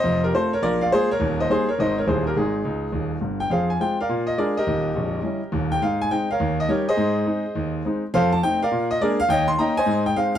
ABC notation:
X:1
M:4/4
L:1/8
Q:"Swing" 1/4=208
K:Ab
V:1 name="Grand piano"
[ce] [GB] [=Ac] [Bd] [B=d] [df] [_Ac] [B_d]- | [Bd] [ce] [Ac] [Bd] [ce] [Bd] [Ac] [GB] | [EA]6 z g | [Acf] a g [B=df]2 e [ABd] [GBe]- |
[GBe]6 z g | f a g [Bdf]2 e [GBd] [Ace]- | [Ace]6 z2 | [=Acf] =a g [B=df]2 e [_ABd] f |
[deg] c' [egb] [cea]2 g f z |]
V:2 name="Grand piano" clef=bass
[F,,,F,,]2 [=A,CF]2 [B,,,B,,]2 [_A,B,F]2 | [E,,,E,,]2 [G,B,E]2 [A,,,A,,A,CE]2 [E,,,E,,G,D_F]2 | [A,,,A,,]2 D,,2 [E,,,E,,]2 [G,,,G,,]2 | F,,2 [A,CF]2 B,,2 [A,=DF]2 |
[E,,,E,,]2 [B,,,,B,,,]2 [G,D_F]2 [E,,,E,,]2 | A,,2 [A,CE]2 E,,2 [G,DE]2 | A,,2 [A,CE]2 E,,2 [A,CE]2 | F,,2 [=A,CE]2 B,,2 [_A,B,=D]2 |
E,,2 [B,DE]2 A,,2 [A,CE]2 |]